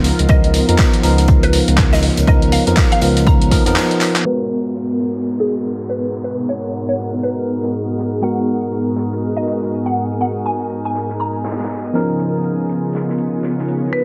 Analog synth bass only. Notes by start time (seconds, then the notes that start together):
Already playing: C#2
0.19 C#2
0.29 C#2
0.69 F2
1.03 C#2
1.68 C#2
2.18 C#2
2.27 C#2
2.67 F2
3.02 C#2
3.66 F2